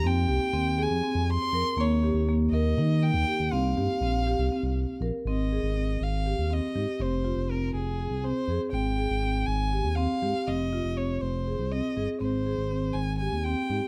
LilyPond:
<<
  \new Staff \with { instrumentName = "Violin" } { \time 7/8 \key f \minor \tempo 4 = 121 g''4. aes''4 c'''4 | des''4 r8 ees''4 g''4 | f''2. r8 | ees''4. f''4 ees''4 |
c''4 bes'8 aes'4 c''8. r16 | g''4. aes''4 f''4 | ees''4 des''8 c''4 ees''8. r16 | c''4. aes''8 aes''8 g''4 | }
  \new Staff \with { instrumentName = "Marimba" } { \time 7/8 \key f \minor c'8 g'8 c'8 aes'8 c'4 bes'8 | bes8 g'8 bes8 bes'8 ees'4 g'8 | c'8 g'8 c'8 g'8 c'4 bes'8 | c'8 aes'8 c'4 g'8 c'8 g'8 |
c'8 f'8 c'4 aes'8 c'8 aes'8 | c'8 aes'8 c'4 g'8 c'8 g'8 | c'8 f'8 c'4 aes'8 c'8 aes'8 | c'8 aes'8 c'4 g'8 c'8 g'8 | }
  \new Staff \with { instrumentName = "Analog synth bass" } { \clef bass \time 7/8 \key f \minor f,8 c,16 r16 ees,8. f,16 r16 f,8 r16 f,16 r16 | ees,8. ees,8. ees,8 ees8. ees,16 r16 ees,16 | c,8 g,16 r16 bes,,8. c,16 r16 c,8 r16 bes,,16 r16 | aes,,8. aes,,8. aes,,8. ees,8 r16 aes,16 r16 |
f,,8. f,,8. f,,8. c,8 r16 f,16 r16 | aes,,8. aes,,8. aes,,8. ees,8 r16 aes,16 r16 | f,,8. f,,8. f,,8. c,8 r16 g,,16 r16 | aes,,8. aes,,8. aes,,8. ees,8 r16 aes,16 r16 | }
>>